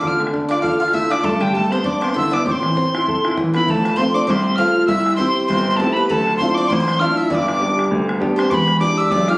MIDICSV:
0, 0, Header, 1, 6, 480
1, 0, Start_track
1, 0, Tempo, 302877
1, 41, Time_signature, 4, 2, 24, 8
1, 14862, End_track
2, 0, Start_track
2, 0, Title_t, "Tin whistle"
2, 0, Program_c, 0, 75
2, 118, Note_on_c, 0, 89, 117
2, 352, Note_off_c, 0, 89, 0
2, 805, Note_on_c, 0, 86, 83
2, 972, Note_off_c, 0, 86, 0
2, 981, Note_on_c, 0, 89, 94
2, 1245, Note_off_c, 0, 89, 0
2, 1281, Note_on_c, 0, 89, 97
2, 1492, Note_on_c, 0, 88, 112
2, 1516, Note_off_c, 0, 89, 0
2, 1768, Note_on_c, 0, 86, 94
2, 1792, Note_off_c, 0, 88, 0
2, 1976, Note_on_c, 0, 81, 105
2, 2000, Note_off_c, 0, 86, 0
2, 2244, Note_on_c, 0, 79, 90
2, 2267, Note_off_c, 0, 81, 0
2, 2437, Note_on_c, 0, 81, 110
2, 2460, Note_off_c, 0, 79, 0
2, 2722, Note_on_c, 0, 84, 95
2, 2746, Note_off_c, 0, 81, 0
2, 2945, Note_on_c, 0, 86, 94
2, 2969, Note_off_c, 0, 84, 0
2, 3237, Note_on_c, 0, 84, 86
2, 3261, Note_off_c, 0, 86, 0
2, 3431, Note_off_c, 0, 84, 0
2, 3446, Note_on_c, 0, 88, 113
2, 3700, Note_on_c, 0, 86, 91
2, 3724, Note_off_c, 0, 88, 0
2, 3903, Note_off_c, 0, 86, 0
2, 3922, Note_on_c, 0, 86, 90
2, 3990, Note_on_c, 0, 84, 97
2, 4005, Note_off_c, 0, 86, 0
2, 5292, Note_off_c, 0, 84, 0
2, 5630, Note_on_c, 0, 83, 87
2, 5812, Note_off_c, 0, 83, 0
2, 5812, Note_on_c, 0, 83, 100
2, 5872, Note_on_c, 0, 81, 109
2, 5887, Note_off_c, 0, 83, 0
2, 6283, Note_on_c, 0, 84, 115
2, 6307, Note_off_c, 0, 81, 0
2, 6568, Note_on_c, 0, 86, 86
2, 6592, Note_off_c, 0, 84, 0
2, 6747, Note_off_c, 0, 86, 0
2, 6756, Note_on_c, 0, 86, 100
2, 6825, Note_on_c, 0, 84, 108
2, 6841, Note_off_c, 0, 86, 0
2, 7222, Note_on_c, 0, 89, 102
2, 7246, Note_off_c, 0, 84, 0
2, 7697, Note_off_c, 0, 89, 0
2, 7707, Note_on_c, 0, 88, 127
2, 8170, Note_off_c, 0, 88, 0
2, 8178, Note_on_c, 0, 84, 125
2, 8645, Note_off_c, 0, 84, 0
2, 8661, Note_on_c, 0, 84, 98
2, 9137, Note_on_c, 0, 81, 89
2, 9161, Note_off_c, 0, 84, 0
2, 9395, Note_on_c, 0, 83, 94
2, 9419, Note_off_c, 0, 81, 0
2, 9608, Note_off_c, 0, 83, 0
2, 9618, Note_on_c, 0, 83, 103
2, 9685, Note_on_c, 0, 81, 112
2, 9700, Note_off_c, 0, 83, 0
2, 10083, Note_off_c, 0, 81, 0
2, 10104, Note_on_c, 0, 84, 117
2, 10372, Note_on_c, 0, 86, 97
2, 10396, Note_off_c, 0, 84, 0
2, 10592, Note_on_c, 0, 84, 98
2, 10616, Note_off_c, 0, 86, 0
2, 11087, Note_on_c, 0, 89, 91
2, 11111, Note_off_c, 0, 84, 0
2, 11361, Note_on_c, 0, 88, 81
2, 11385, Note_off_c, 0, 89, 0
2, 11571, Note_off_c, 0, 88, 0
2, 11587, Note_on_c, 0, 88, 101
2, 11646, Note_on_c, 0, 86, 110
2, 11661, Note_off_c, 0, 88, 0
2, 12473, Note_off_c, 0, 86, 0
2, 13277, Note_on_c, 0, 84, 101
2, 13476, Note_on_c, 0, 86, 117
2, 13499, Note_off_c, 0, 84, 0
2, 13529, Note_on_c, 0, 83, 127
2, 13545, Note_off_c, 0, 86, 0
2, 13934, Note_off_c, 0, 83, 0
2, 13943, Note_on_c, 0, 86, 125
2, 14227, Note_on_c, 0, 88, 99
2, 14251, Note_off_c, 0, 86, 0
2, 14439, Note_on_c, 0, 86, 111
2, 14463, Note_off_c, 0, 88, 0
2, 14729, Note_on_c, 0, 89, 96
2, 14753, Note_off_c, 0, 86, 0
2, 14862, Note_off_c, 0, 89, 0
2, 14862, End_track
3, 0, Start_track
3, 0, Title_t, "Mandolin"
3, 0, Program_c, 1, 25
3, 12, Note_on_c, 1, 77, 74
3, 278, Note_off_c, 1, 77, 0
3, 770, Note_on_c, 1, 74, 91
3, 976, Note_off_c, 1, 74, 0
3, 983, Note_on_c, 1, 77, 83
3, 1246, Note_off_c, 1, 77, 0
3, 1266, Note_on_c, 1, 77, 83
3, 1466, Note_off_c, 1, 77, 0
3, 1478, Note_on_c, 1, 76, 86
3, 1735, Note_off_c, 1, 76, 0
3, 1749, Note_on_c, 1, 74, 80
3, 1950, Note_off_c, 1, 74, 0
3, 1957, Note_on_c, 1, 69, 77
3, 2215, Note_off_c, 1, 69, 0
3, 2224, Note_on_c, 1, 67, 74
3, 2427, Note_off_c, 1, 67, 0
3, 2453, Note_on_c, 1, 69, 83
3, 2705, Note_off_c, 1, 69, 0
3, 2733, Note_on_c, 1, 72, 81
3, 2910, Note_off_c, 1, 72, 0
3, 2917, Note_on_c, 1, 74, 77
3, 3178, Note_off_c, 1, 74, 0
3, 3189, Note_on_c, 1, 72, 80
3, 3392, Note_on_c, 1, 76, 76
3, 3413, Note_off_c, 1, 72, 0
3, 3656, Note_off_c, 1, 76, 0
3, 3662, Note_on_c, 1, 74, 68
3, 3869, Note_off_c, 1, 74, 0
3, 3895, Note_on_c, 1, 72, 64
3, 5278, Note_off_c, 1, 72, 0
3, 5604, Note_on_c, 1, 71, 65
3, 5825, Note_off_c, 1, 71, 0
3, 5837, Note_on_c, 1, 69, 70
3, 6084, Note_off_c, 1, 69, 0
3, 6108, Note_on_c, 1, 71, 78
3, 6270, Note_off_c, 1, 71, 0
3, 6277, Note_on_c, 1, 72, 87
3, 6543, Note_off_c, 1, 72, 0
3, 6579, Note_on_c, 1, 74, 86
3, 6760, Note_off_c, 1, 74, 0
3, 6767, Note_on_c, 1, 72, 85
3, 7257, Note_on_c, 1, 77, 96
3, 7271, Note_off_c, 1, 72, 0
3, 7707, Note_off_c, 1, 77, 0
3, 7740, Note_on_c, 1, 76, 86
3, 8188, Note_off_c, 1, 76, 0
3, 8210, Note_on_c, 1, 72, 84
3, 8673, Note_off_c, 1, 72, 0
3, 8692, Note_on_c, 1, 72, 83
3, 8827, Note_off_c, 1, 72, 0
3, 8846, Note_on_c, 1, 72, 75
3, 9014, Note_off_c, 1, 72, 0
3, 9046, Note_on_c, 1, 72, 79
3, 9182, Note_off_c, 1, 72, 0
3, 9188, Note_on_c, 1, 69, 69
3, 9447, Note_off_c, 1, 69, 0
3, 9453, Note_on_c, 1, 71, 71
3, 9652, Note_off_c, 1, 71, 0
3, 9658, Note_on_c, 1, 69, 89
3, 10104, Note_off_c, 1, 69, 0
3, 10147, Note_on_c, 1, 72, 70
3, 10395, Note_off_c, 1, 72, 0
3, 10420, Note_on_c, 1, 74, 89
3, 10611, Note_off_c, 1, 74, 0
3, 10617, Note_on_c, 1, 72, 79
3, 10757, Note_off_c, 1, 72, 0
3, 10776, Note_on_c, 1, 72, 79
3, 10899, Note_off_c, 1, 72, 0
3, 10918, Note_on_c, 1, 72, 78
3, 11075, Note_off_c, 1, 72, 0
3, 11106, Note_on_c, 1, 77, 75
3, 11356, Note_off_c, 1, 77, 0
3, 11362, Note_on_c, 1, 76, 67
3, 11557, Note_off_c, 1, 76, 0
3, 11572, Note_on_c, 1, 74, 80
3, 12466, Note_off_c, 1, 74, 0
3, 13251, Note_on_c, 1, 72, 71
3, 13457, Note_off_c, 1, 72, 0
3, 13487, Note_on_c, 1, 71, 78
3, 13932, Note_off_c, 1, 71, 0
3, 13958, Note_on_c, 1, 74, 80
3, 14213, Note_off_c, 1, 74, 0
3, 14264, Note_on_c, 1, 76, 92
3, 14445, Note_off_c, 1, 76, 0
3, 14451, Note_on_c, 1, 74, 87
3, 14699, Note_off_c, 1, 74, 0
3, 14716, Note_on_c, 1, 77, 88
3, 14862, Note_off_c, 1, 77, 0
3, 14862, End_track
4, 0, Start_track
4, 0, Title_t, "Alto saxophone"
4, 0, Program_c, 2, 65
4, 42, Note_on_c, 2, 65, 82
4, 314, Note_off_c, 2, 65, 0
4, 783, Note_on_c, 2, 62, 81
4, 995, Note_on_c, 2, 65, 89
4, 1019, Note_off_c, 2, 62, 0
4, 1246, Note_off_c, 2, 65, 0
4, 1256, Note_on_c, 2, 65, 73
4, 1465, Note_on_c, 2, 64, 74
4, 1489, Note_off_c, 2, 65, 0
4, 1758, Note_on_c, 2, 62, 87
4, 1782, Note_off_c, 2, 64, 0
4, 1951, Note_on_c, 2, 57, 77
4, 1974, Note_off_c, 2, 62, 0
4, 2230, Note_on_c, 2, 55, 73
4, 2254, Note_off_c, 2, 57, 0
4, 2427, Note_on_c, 2, 57, 84
4, 2451, Note_off_c, 2, 55, 0
4, 2703, Note_on_c, 2, 60, 77
4, 2727, Note_off_c, 2, 57, 0
4, 2917, Note_off_c, 2, 60, 0
4, 2926, Note_on_c, 2, 62, 64
4, 3178, Note_on_c, 2, 60, 72
4, 3201, Note_off_c, 2, 62, 0
4, 3404, Note_on_c, 2, 64, 70
4, 3428, Note_off_c, 2, 60, 0
4, 3882, Note_on_c, 2, 60, 70
4, 3905, Note_off_c, 2, 64, 0
4, 5335, Note_off_c, 2, 60, 0
4, 5604, Note_on_c, 2, 59, 81
4, 5804, Note_off_c, 2, 59, 0
4, 5820, Note_on_c, 2, 57, 84
4, 6311, Note_on_c, 2, 60, 88
4, 6335, Note_off_c, 2, 57, 0
4, 6561, Note_on_c, 2, 62, 89
4, 6585, Note_off_c, 2, 60, 0
4, 6778, Note_on_c, 2, 60, 82
4, 6802, Note_off_c, 2, 62, 0
4, 7259, Note_on_c, 2, 65, 93
4, 7282, Note_off_c, 2, 60, 0
4, 7533, Note_off_c, 2, 65, 0
4, 7561, Note_on_c, 2, 65, 95
4, 7777, Note_on_c, 2, 64, 88
4, 7801, Note_off_c, 2, 65, 0
4, 8224, Note_on_c, 2, 60, 87
4, 8248, Note_off_c, 2, 64, 0
4, 8695, Note_off_c, 2, 60, 0
4, 8705, Note_on_c, 2, 60, 81
4, 9171, Note_on_c, 2, 57, 69
4, 9195, Note_off_c, 2, 60, 0
4, 9467, Note_on_c, 2, 59, 78
4, 9490, Note_off_c, 2, 57, 0
4, 9668, Note_off_c, 2, 59, 0
4, 9681, Note_on_c, 2, 57, 72
4, 10168, Note_on_c, 2, 60, 81
4, 10191, Note_off_c, 2, 57, 0
4, 10429, Note_on_c, 2, 62, 75
4, 10453, Note_off_c, 2, 60, 0
4, 10634, Note_on_c, 2, 60, 79
4, 10658, Note_off_c, 2, 62, 0
4, 11101, Note_on_c, 2, 65, 90
4, 11125, Note_off_c, 2, 60, 0
4, 11386, Note_on_c, 2, 64, 92
4, 11410, Note_off_c, 2, 65, 0
4, 11574, Note_off_c, 2, 64, 0
4, 11584, Note_on_c, 2, 62, 83
4, 12472, Note_off_c, 2, 62, 0
4, 13299, Note_on_c, 2, 60, 79
4, 13490, Note_on_c, 2, 59, 89
4, 13513, Note_off_c, 2, 60, 0
4, 13972, Note_on_c, 2, 62, 101
4, 13996, Note_off_c, 2, 59, 0
4, 14448, Note_off_c, 2, 62, 0
4, 14457, Note_on_c, 2, 62, 84
4, 14718, Note_on_c, 2, 65, 96
4, 14742, Note_off_c, 2, 62, 0
4, 14862, Note_off_c, 2, 65, 0
4, 14862, End_track
5, 0, Start_track
5, 0, Title_t, "Grand piano"
5, 0, Program_c, 3, 0
5, 19, Note_on_c, 3, 50, 63
5, 302, Note_on_c, 3, 57, 52
5, 510, Note_off_c, 3, 57, 0
5, 514, Note_on_c, 3, 62, 53
5, 782, Note_off_c, 3, 62, 0
5, 795, Note_on_c, 3, 65, 45
5, 995, Note_on_c, 3, 69, 69
5, 998, Note_off_c, 3, 65, 0
5, 1263, Note_off_c, 3, 69, 0
5, 1269, Note_on_c, 3, 65, 60
5, 1476, Note_off_c, 3, 65, 0
5, 1481, Note_on_c, 3, 57, 65
5, 1745, Note_on_c, 3, 65, 50
5, 1747, Note_off_c, 3, 57, 0
5, 1899, Note_off_c, 3, 50, 0
5, 1954, Note_on_c, 3, 43, 57
5, 1955, Note_off_c, 3, 65, 0
5, 2219, Note_on_c, 3, 50, 55
5, 2433, Note_off_c, 3, 50, 0
5, 2437, Note_on_c, 3, 55, 49
5, 2708, Note_off_c, 3, 55, 0
5, 2708, Note_on_c, 3, 59, 54
5, 2918, Note_on_c, 3, 62, 66
5, 2919, Note_off_c, 3, 59, 0
5, 3184, Note_on_c, 3, 59, 58
5, 3190, Note_off_c, 3, 62, 0
5, 3398, Note_off_c, 3, 59, 0
5, 3408, Note_on_c, 3, 50, 65
5, 3669, Note_on_c, 3, 59, 55
5, 3676, Note_off_c, 3, 50, 0
5, 3832, Note_off_c, 3, 43, 0
5, 3881, Note_off_c, 3, 59, 0
5, 3890, Note_on_c, 3, 45, 49
5, 4144, Note_on_c, 3, 52, 52
5, 4360, Note_off_c, 3, 52, 0
5, 4368, Note_on_c, 3, 60, 55
5, 4638, Note_off_c, 3, 60, 0
5, 4663, Note_on_c, 3, 64, 52
5, 4861, Note_off_c, 3, 64, 0
5, 4877, Note_on_c, 3, 69, 66
5, 5134, Note_off_c, 3, 69, 0
5, 5143, Note_on_c, 3, 64, 58
5, 5341, Note_off_c, 3, 64, 0
5, 5379, Note_on_c, 3, 52, 54
5, 5625, Note_off_c, 3, 52, 0
5, 5640, Note_on_c, 3, 64, 50
5, 5762, Note_off_c, 3, 45, 0
5, 5831, Note_off_c, 3, 64, 0
5, 5853, Note_on_c, 3, 41, 62
5, 5856, Note_on_c, 3, 29, 48
5, 6306, Note_off_c, 3, 41, 0
5, 6333, Note_on_c, 3, 60, 48
5, 6349, Note_on_c, 3, 69, 51
5, 6351, Note_on_c, 3, 65, 41
5, 6706, Note_off_c, 3, 60, 0
5, 6716, Note_off_c, 3, 69, 0
5, 6717, Note_off_c, 3, 65, 0
5, 6811, Note_on_c, 3, 36, 82
5, 7264, Note_off_c, 3, 36, 0
5, 7267, Note_on_c, 3, 65, 53
5, 7270, Note_on_c, 3, 60, 56
5, 7283, Note_on_c, 3, 69, 62
5, 7650, Note_off_c, 3, 65, 0
5, 7652, Note_off_c, 3, 60, 0
5, 7660, Note_off_c, 3, 69, 0
5, 7698, Note_off_c, 3, 29, 0
5, 7745, Note_on_c, 3, 36, 69
5, 8210, Note_off_c, 3, 36, 0
5, 8213, Note_on_c, 3, 60, 45
5, 8219, Note_on_c, 3, 64, 41
5, 8224, Note_on_c, 3, 67, 51
5, 8601, Note_off_c, 3, 60, 0
5, 8605, Note_off_c, 3, 64, 0
5, 8607, Note_off_c, 3, 67, 0
5, 8709, Note_on_c, 3, 31, 79
5, 9171, Note_off_c, 3, 31, 0
5, 9206, Note_on_c, 3, 60, 63
5, 9215, Note_on_c, 3, 67, 62
5, 9216, Note_on_c, 3, 64, 51
5, 9579, Note_off_c, 3, 60, 0
5, 9585, Note_off_c, 3, 64, 0
5, 9585, Note_off_c, 3, 67, 0
5, 9689, Note_on_c, 3, 38, 64
5, 9690, Note_on_c, 3, 26, 57
5, 10140, Note_off_c, 3, 38, 0
5, 10147, Note_on_c, 3, 62, 49
5, 10160, Note_on_c, 3, 64, 43
5, 10171, Note_on_c, 3, 65, 52
5, 10527, Note_off_c, 3, 62, 0
5, 10534, Note_off_c, 3, 64, 0
5, 10541, Note_off_c, 3, 65, 0
5, 10645, Note_on_c, 3, 33, 89
5, 11095, Note_off_c, 3, 33, 0
5, 11099, Note_on_c, 3, 62, 60
5, 11100, Note_on_c, 3, 64, 55
5, 11102, Note_on_c, 3, 65, 67
5, 11480, Note_off_c, 3, 62, 0
5, 11481, Note_off_c, 3, 64, 0
5, 11482, Note_off_c, 3, 65, 0
5, 11525, Note_off_c, 3, 26, 0
5, 11565, Note_on_c, 3, 31, 62
5, 11568, Note_on_c, 3, 43, 66
5, 12035, Note_off_c, 3, 43, 0
5, 12043, Note_on_c, 3, 59, 47
5, 12047, Note_on_c, 3, 62, 43
5, 12055, Note_on_c, 3, 67, 53
5, 12429, Note_off_c, 3, 59, 0
5, 12432, Note_off_c, 3, 62, 0
5, 12436, Note_off_c, 3, 67, 0
5, 12532, Note_on_c, 3, 38, 73
5, 12990, Note_on_c, 3, 59, 56
5, 12995, Note_off_c, 3, 38, 0
5, 12997, Note_on_c, 3, 62, 52
5, 13001, Note_on_c, 3, 67, 66
5, 13380, Note_off_c, 3, 59, 0
5, 13384, Note_off_c, 3, 62, 0
5, 13387, Note_off_c, 3, 67, 0
5, 13419, Note_off_c, 3, 31, 0
5, 13502, Note_on_c, 3, 28, 63
5, 13502, Note_on_c, 3, 40, 56
5, 13947, Note_on_c, 3, 62, 46
5, 13950, Note_on_c, 3, 64, 40
5, 13959, Note_off_c, 3, 40, 0
5, 13960, Note_on_c, 3, 67, 53
5, 14337, Note_off_c, 3, 62, 0
5, 14339, Note_off_c, 3, 64, 0
5, 14345, Note_off_c, 3, 67, 0
5, 14443, Note_on_c, 3, 35, 76
5, 14862, Note_off_c, 3, 28, 0
5, 14862, Note_off_c, 3, 35, 0
5, 14862, End_track
6, 0, Start_track
6, 0, Title_t, "Bodhran"
6, 57, Note_on_c, 9, 64, 77
6, 216, Note_off_c, 9, 64, 0
6, 318, Note_on_c, 9, 64, 56
6, 426, Note_off_c, 9, 64, 0
6, 426, Note_on_c, 9, 64, 62
6, 535, Note_off_c, 9, 64, 0
6, 535, Note_on_c, 9, 64, 77
6, 694, Note_off_c, 9, 64, 0
6, 806, Note_on_c, 9, 64, 54
6, 964, Note_off_c, 9, 64, 0
6, 1014, Note_on_c, 9, 64, 77
6, 1173, Note_off_c, 9, 64, 0
6, 1393, Note_on_c, 9, 64, 47
6, 1499, Note_off_c, 9, 64, 0
6, 1499, Note_on_c, 9, 64, 72
6, 1658, Note_off_c, 9, 64, 0
6, 1766, Note_on_c, 9, 64, 65
6, 1925, Note_off_c, 9, 64, 0
6, 1965, Note_on_c, 9, 64, 77
6, 2123, Note_off_c, 9, 64, 0
6, 2232, Note_on_c, 9, 64, 53
6, 2342, Note_off_c, 9, 64, 0
6, 2342, Note_on_c, 9, 64, 51
6, 2454, Note_off_c, 9, 64, 0
6, 2454, Note_on_c, 9, 64, 65
6, 2612, Note_off_c, 9, 64, 0
6, 2726, Note_on_c, 9, 64, 56
6, 2885, Note_off_c, 9, 64, 0
6, 2927, Note_on_c, 9, 64, 80
6, 3086, Note_off_c, 9, 64, 0
6, 3202, Note_on_c, 9, 64, 65
6, 3306, Note_off_c, 9, 64, 0
6, 3306, Note_on_c, 9, 64, 46
6, 3427, Note_off_c, 9, 64, 0
6, 3427, Note_on_c, 9, 64, 81
6, 3586, Note_off_c, 9, 64, 0
6, 3700, Note_on_c, 9, 64, 60
6, 3859, Note_off_c, 9, 64, 0
6, 3911, Note_on_c, 9, 64, 87
6, 4069, Note_off_c, 9, 64, 0
6, 4167, Note_on_c, 9, 64, 52
6, 4326, Note_off_c, 9, 64, 0
6, 4389, Note_on_c, 9, 64, 89
6, 4547, Note_off_c, 9, 64, 0
6, 4669, Note_on_c, 9, 64, 67
6, 4828, Note_off_c, 9, 64, 0
6, 4880, Note_on_c, 9, 64, 81
6, 5038, Note_off_c, 9, 64, 0
6, 5146, Note_on_c, 9, 64, 67
6, 5249, Note_off_c, 9, 64, 0
6, 5249, Note_on_c, 9, 64, 55
6, 5347, Note_off_c, 9, 64, 0
6, 5347, Note_on_c, 9, 64, 86
6, 5506, Note_off_c, 9, 64, 0
6, 5617, Note_on_c, 9, 64, 62
6, 5776, Note_off_c, 9, 64, 0
6, 5823, Note_on_c, 9, 64, 76
6, 5982, Note_off_c, 9, 64, 0
6, 6104, Note_on_c, 9, 64, 57
6, 6217, Note_off_c, 9, 64, 0
6, 6217, Note_on_c, 9, 64, 25
6, 6305, Note_off_c, 9, 64, 0
6, 6305, Note_on_c, 9, 64, 68
6, 6463, Note_off_c, 9, 64, 0
6, 6783, Note_on_c, 9, 64, 81
6, 6941, Note_off_c, 9, 64, 0
6, 7264, Note_on_c, 9, 64, 83
6, 7423, Note_off_c, 9, 64, 0
6, 7742, Note_on_c, 9, 64, 85
6, 7900, Note_off_c, 9, 64, 0
6, 8025, Note_on_c, 9, 64, 60
6, 8139, Note_off_c, 9, 64, 0
6, 8139, Note_on_c, 9, 64, 28
6, 8236, Note_off_c, 9, 64, 0
6, 8236, Note_on_c, 9, 64, 86
6, 8395, Note_off_c, 9, 64, 0
6, 8717, Note_on_c, 9, 64, 72
6, 8876, Note_off_c, 9, 64, 0
6, 9189, Note_on_c, 9, 64, 73
6, 9347, Note_off_c, 9, 64, 0
6, 9669, Note_on_c, 9, 64, 67
6, 9828, Note_off_c, 9, 64, 0
6, 9939, Note_on_c, 9, 64, 51
6, 10055, Note_off_c, 9, 64, 0
6, 10055, Note_on_c, 9, 64, 22
6, 10154, Note_off_c, 9, 64, 0
6, 10154, Note_on_c, 9, 64, 76
6, 10313, Note_off_c, 9, 64, 0
6, 10629, Note_on_c, 9, 64, 75
6, 10787, Note_off_c, 9, 64, 0
6, 10902, Note_on_c, 9, 64, 69
6, 11060, Note_off_c, 9, 64, 0
6, 11111, Note_on_c, 9, 64, 70
6, 11269, Note_off_c, 9, 64, 0
6, 11580, Note_on_c, 9, 64, 85
6, 11738, Note_off_c, 9, 64, 0
6, 11860, Note_on_c, 9, 64, 64
6, 11966, Note_off_c, 9, 64, 0
6, 11966, Note_on_c, 9, 64, 26
6, 12078, Note_off_c, 9, 64, 0
6, 12078, Note_on_c, 9, 64, 79
6, 12236, Note_off_c, 9, 64, 0
6, 12345, Note_on_c, 9, 64, 58
6, 12503, Note_off_c, 9, 64, 0
6, 12551, Note_on_c, 9, 64, 69
6, 12709, Note_off_c, 9, 64, 0
6, 12824, Note_on_c, 9, 64, 68
6, 12982, Note_off_c, 9, 64, 0
6, 13020, Note_on_c, 9, 64, 83
6, 13178, Note_off_c, 9, 64, 0
6, 13295, Note_on_c, 9, 64, 71
6, 13453, Note_off_c, 9, 64, 0
6, 13495, Note_on_c, 9, 64, 91
6, 13653, Note_off_c, 9, 64, 0
6, 13752, Note_on_c, 9, 64, 57
6, 13858, Note_off_c, 9, 64, 0
6, 13858, Note_on_c, 9, 64, 26
6, 13959, Note_off_c, 9, 64, 0
6, 13959, Note_on_c, 9, 64, 79
6, 14118, Note_off_c, 9, 64, 0
6, 14435, Note_on_c, 9, 64, 87
6, 14593, Note_off_c, 9, 64, 0
6, 14707, Note_on_c, 9, 64, 69
6, 14862, Note_off_c, 9, 64, 0
6, 14862, End_track
0, 0, End_of_file